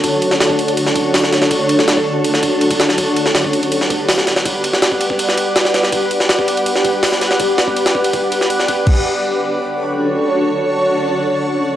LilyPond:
<<
  \new Staff \with { instrumentName = "Ambient pad" } { \time 4/4 \key d \major \tempo 4 = 163 r1 | r1 | r1 | r1 |
r1 | r1 | <d' fis' a' cis''>1~ | <d' fis' a' cis''>1 | }
  \new DrumStaff \with { instrumentName = "Drums" } \drummode { \time 4/4 <bd cymr>8 cymr16 sn16 <cymr sn>16 bd16 cymr16 cymr16 cymr16 sn16 <bd cymr>8 <hho sn>16 sn16 <cymr sn>16 sn16 | <bd cymr>8 cymr16 sn16 <cymr sn>16 bd8. cymr16 sn16 <bd cymr>8 cymr16 <bd cymr>16 <cymr sn>16 sn16 | <bd cymr>8 cymr16 sn16 <cymr sn>16 bd16 cymr16 cymr16 cymr16 sn16 <bd cymr>8 <hho sn>16 sn16 <cymr sn>16 sn16 | <bd cymr>8 cymr16 sn16 <cymr sn>16 bd16 cymr16 bd16 cymr16 sn16 cymr8 <cymr sn>16 sn16 <cymr sn>16 sn16 |
<bd cymr>8 cymr16 sn16 <cymr sn>16 bd16 cymr16 cymr16 cymr16 sn16 <bd cymr>8 <hho sn>16 sn16 <cymr sn>16 sn16 | <bd cymr>8 <cymr sn>16 bd16 cymr16 <cymr sn>16 bd16 cymr16 <bd cymr>8 cymr16 sn16 cymr16 sn16 <bd cymr>8 | <cymc bd>4 r4 r4 r4 | r4 r4 r4 r4 | }
>>